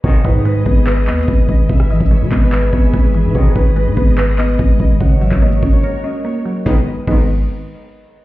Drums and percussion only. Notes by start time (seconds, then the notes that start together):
0.04 kick, closed hi-hat
0.25 kick, closed hi-hat
0.45 closed hi-hat
0.66 kick, closed hi-hat
0.87 clap, closed hi-hat
1.07 clap, closed hi-hat
1.13 closed hi-hat
1.18 closed hi-hat
1.23 closed hi-hat
1.28 kick, closed hi-hat
1.49 kick, closed hi-hat
1.69 kick, closed hi-hat
1.80 cross-stick
1.90 closed hi-hat, open hi-hat
1.95 closed hi-hat
2.00 kick, closed hi-hat
2.06 closed hi-hat
2.11 closed hi-hat
2.18 closed hi-hat
2.25 closed hi-hat
2.31 kick, clap, closed hi-hat
2.52 clap, closed hi-hat
2.73 kick, closed hi-hat
2.94 kick, closed hi-hat
3.14 closed hi-hat
3.35 kick, closed hi-hat
3.56 kick, closed hi-hat
3.76 closed hi-hat
3.97 kick, closed hi-hat
4.18 clap, closed hi-hat
4.38 clap, closed hi-hat
4.44 closed hi-hat
4.49 closed hi-hat
4.54 closed hi-hat
4.59 kick, closed hi-hat
4.80 kick, closed hi-hat
5.00 kick, closed hi-hat
5.21 open hi-hat
5.32 kick, clap
5.42 closed hi-hat
5.52 closed hi-hat
5.62 kick, closed hi-hat
6.66 kick, snare
7.07 kick, crash